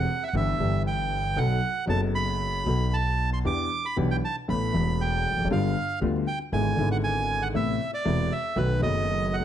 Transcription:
Already playing: bandoneon F#5
0.23 bandoneon E5
0.28 bandoneon F#5
0.33 upright bass G1, upright piano G1 G2 E3 B3 D4 G4, bandoneon E5
0.58 upright bass G1, upright piano G1 G2 E3 B3 D4 G4
0.87 bandoneon G5
1.36 upright bass B1, upright piano B1 B2 F#3 B3 D#4 A4, bandoneon F#5
1.86 upright bass F#1, upright piano F#1 F#2 F#3 B3 D#4 A4, bandoneon A5
2.15 bandoneon B5
2.64 upright bass B1, upright piano B1 B2 F#3 B3 D#4
2.68 upright piano A4
2.94 bandoneon A5
3.33 bandoneon C6
3.45 upright piano E2 E3 B3 D4 G4, upright bass E2, bandoneon D6
3.86 bandoneon B5
3.96 upright piano B1 B2 E3 B3 D4 G4, upright bass B1
4.11 bandoneon G5
4.25 bandoneon A5
4.48 upright piano A1 A2 E3 A3 B3 A4, upright bass A1, bandoneon B5
4.72 upright piano E1 E2 E3 A3 B3, upright bass E1
4.76 upright piano A4
5.01 bandoneon G5
5.32 upright bass E1, upright piano E2
5.38 upright bass F1, upright piano F2
5.44 upright bass F#1, upright piano F#2
5.50 upright bass G1, upright piano G1 G2 D3 G3 B3 F4, bandoneon F5
6.01 upright piano D2 D3 G3 B3 F4, upright bass D2
6.27 bandoneon G5
6.52 upright bass G#1, upright piano G#1 G#2 D3 G#3 B3 E4, bandoneon G#5
6.76 upright piano G#1 G#2 D3 G#3 B3, upright bass G#1
6.80 upright piano E4
6.92 bandoneon F#5
7.04 bandoneon G#5
7.42 bandoneon F#5
7.54 upright piano A1 A2 C3 A3 B3 E4, upright bass A1, bandoneon E5
7.94 bandoneon D5
8.05 upright piano E1 E2 C3 A3 B3 E4, upright bass E1
8.32 bandoneon E5
8.56 upright bass B1, upright piano B1 B2 D#3 A3 B3 F#4, bandoneon B4
8.79 upright piano F#1 F#2 D#3 A3 B3 F#4, upright bass F#1, bandoneon D#5
9.34 bandoneon F#5
9.39 upright piano C#2, upright bass C#2

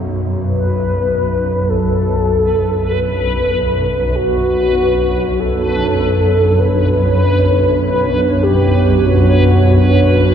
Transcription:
Already playing: synth drone B1 F#2
0.46 soft synth lead B4
1.68 synth drone B1 F#2, analog synth pad B3, soft synth lead A4, synth texture B4
2.27 analog synth pad D4
2.63 analog synth pad C#5
2.92 soft synth lead B4
4.15 soft synth lead F#4
5.39 soft synth lead A4
6.59 soft synth lead B4
7.81 soft synth lead B4
8.43 soft synth lead G4
9.04 soft synth lead F#4
10.26 soft synth lead F#4

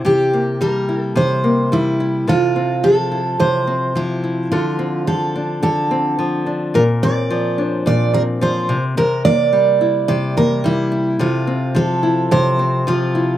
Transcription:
Already playing: nylon-string guitar C4
0.05 nylon-string guitar C3 G4, steel-string acoustic guitar G4
0.33 nylon-string guitar A#3
0.61 nylon-string guitar G3, steel-string acoustic guitar A#4
0.89 nylon-string guitar E4
0.98 steel-string acoustic guitar A4
1.15 nylon-string guitar C3, steel-string acoustic guitar C5
1.44 nylon-string guitar A#3
1.72 nylon-string guitar G3, steel-string acoustic guitar E4
2.00 nylon-string guitar E4
2.27 nylon-string guitar C3 A4, steel-string acoustic guitar F4
2.56 nylon-string guitar C4
2.83 nylon-string guitar F3, steel-string acoustic guitar A4
3.12 nylon-string guitar E4
3.40 nylon-string guitar C3, steel-string acoustic guitar C5
3.67 nylon-string guitar C4
3.95 nylon-string guitar F3, steel-string acoustic guitar E4
4.24 nylon-string guitar E4
4.52 nylon-string guitar D3 A4, steel-string acoustic guitar F4
4.79 nylon-string guitar C4
5.07 nylon-string guitar F3, steel-string acoustic guitar A4
5.36 nylon-string guitar D4
5.63 nylon-string guitar D3, steel-string acoustic guitar A4
5.91 nylon-string guitar C4
6.19 nylon-string guitar F3
6.46 nylon-string guitar D4
6.74 nylon-string guitar A#2 A#4, steel-string acoustic guitar A#4
7.03 nylon-string guitar C4, steel-string acoustic guitar D5
7.30 nylon-string guitar F3
7.58 nylon-string guitar D4
7.65 steel-string acoustic guitar C5
7.86 nylon-string guitar A#2, steel-string acoustic guitar D5
8.13 nylon-string guitar C4, steel-string acoustic guitar A#4
8.41 nylon-string guitar F3, steel-string acoustic guitar C5
8.69 nylon-string guitar C3
8.97 nylon-string guitar C3 A#4, steel-string acoustic guitar A#4
9.25 nylon-string guitar A#3, steel-string acoustic guitar D5
9.53 nylon-string guitar G3
9.81 nylon-string guitar E4
10.08 nylon-string guitar C3, steel-string acoustic guitar D5
10.37 nylon-string guitar A#3, steel-string acoustic guitar A#4
10.64 nylon-string guitar G3, steel-string acoustic guitar E4
10.92 nylon-string guitar E4
11.19 nylon-string guitar C3 A4, steel-string acoustic guitar F4
11.47 nylon-string guitar C4
11.75 nylon-string guitar F3, steel-string acoustic guitar A4
12.03 nylon-string guitar E4
12.31 nylon-string guitar C3, steel-string acoustic guitar C5
12.59 nylon-string guitar C4
12.87 nylon-string guitar F3, steel-string acoustic guitar F4
13.15 nylon-string guitar E4

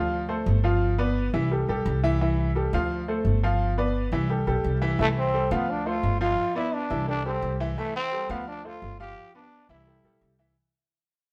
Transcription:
Already playing: upright bass D2, upright piano F3 F4 F5
0.29 upright piano A3 A4 C5
0.46 upright bass G1
0.64 upright piano F3 F4 F5
0.98 upright piano B3 B4 D5
1.34 upright bass C2, upright piano E3 E4 E5
1.51 upright piano G3 G4 A4
1.68 upright bass B1, upright piano G3 G4 A4
1.86 upright bass C2
2.04 upright piano E3 E4 E5
2.21 upright piano E3 E4 E5
2.55 upright piano G3 G4 A4
2.73 upright bass D2, upright piano F3 F4 F5
3.08 upright piano A3 A4 C5
3.25 upright bass G1
3.43 upright piano F3 F4 F5
3.78 upright piano B3 B4 D5
4.12 upright bass C2, upright piano E3 E4 E5
4.30 upright piano G3 G4 A4
4.47 upright bass B1, upright piano G3 G4 A4
4.64 upright bass C2
4.82 upright piano E3 E4 E5
4.99 upright bass C2, upright piano E3 E4 E5, trombone A3
5.19 trombone C4
5.34 upright piano G3 G4 A4
5.51 upright bass D2, upright piano F3 F4 F5, trombone B3
5.70 trombone D4
5.86 upright piano A3 A4 C5, trombone F4
6.03 upright bass G1
6.21 upright piano F3 F4 F5, trombone F4
6.55 upright piano B3 B4 D5, trombone E4
6.74 trombone D4
6.90 upright bass C2, upright piano E3 E4 E5
7.08 upright piano G3 G4 A4, trombone D4
7.25 upright piano G3 G4 A4, trombone C4
7.42 upright bass C2
7.60 upright piano E3 E4 E5
7.78 upright piano E3 E4 E5, trombone A3
7.96 trombone C4
8.12 upright piano G3 G4 A4
8.29 upright bass D2, upright piano F3 F4 F5, trombone B3
8.48 trombone D4
8.65 upright piano A3 A4 C5, trombone F4
8.82 upright bass G1
9.00 upright piano F3 F4 F5, trombone G4
9.35 upright piano B3 B4 D5, trombone D4
9.69 upright bass C2, upright piano E3 E4 E5, trombone E4
9.87 upright piano G3 G4 A4
10.04 upright bass B1, upright piano G3 G4 A4
10.21 upright bass C2
10.39 upright piano E3 E4 E5

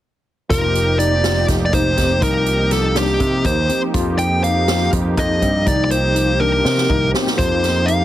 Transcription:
0.48 picked electric bass F1, analog synth pad F3 A#3 D#4 G4, tine electric piano F4, lead electric guitar A#4, kick, closed hi-hat
0.75 closed hi-hat
0.99 tine electric piano D#4, lead electric guitar D5, closed hi-hat
1.23 tine electric piano F4, snare, closed hi-hat
1.48 picked electric bass F1, kick, snare, closed hi-hat
1.66 lead electric guitar D5
1.73 picked electric bass F1, tine electric piano D#4, lead electric guitar C5, kick, closed hi-hat
1.97 picked electric bass F1, tine electric piano C4, kick, snare, closed hi-hat
2.20 picked electric bass C2, analog synth pad F3 A#3 D#4 G4, tine electric piano D#4, lead electric guitar A#4, kick, closed hi-hat
2.46 closed hi-hat
2.71 tine electric piano D#4, lead electric guitar A4, snare, closed hi-hat
2.95 tine electric piano D4, lead electric guitar G4, snare, closed hi-hat
3.20 picked electric bass C3, kick, closed hi-hat
3.44 picked electric bass D#2, tine electric piano D#4, lead electric guitar C5, kick, closed hi-hat
3.69 tine electric piano C4, closed hi-hat
3.92 picked electric bass F2, analog synth pad F3 A#3 D#4 G4, tine electric piano F4, kick, closed hi-hat
4.19 lead electric guitar G5, closed hi-hat
4.43 tine electric piano D#4, lead electric guitar F5, closed hi-hat
4.68 tine electric piano F4, snare, closed hi-hat
4.93 picked electric bass F2, kick, closed hi-hat
5.17 picked electric bass F2, tine electric piano D#4, lead electric guitar D#5, kick, closed hi-hat
5.42 picked electric bass G2, tine electric piano C4, kick, closed hi-hat
5.65 picked electric bass C2, analog synth pad F3 A#3 D#4 G4, tine electric piano D#4, lead electric guitar D5, kick, closed hi-hat
5.84 lead electric guitar D5
5.91 lead electric guitar C5, closed hi-hat
6.15 tine electric piano D#4, closed hi-hat
6.40 tine electric piano D4, lead electric guitar A#4, high tom
6.65 picked electric bass C3, snare
6.78 snare
6.89 picked electric bass C2, tine electric piano D#4, kick, mid tom
7.14 tine electric piano C4, snare
7.27 snare
7.37 picked electric bass F2, analog synth pad F3 A#3 D#4 G4, tine electric piano F4, lead electric guitar C5, kick, closed hi-hat
7.64 snare, closed hi-hat
7.86 tine electric piano D#4, lead electric guitar F5, closed hi-hat

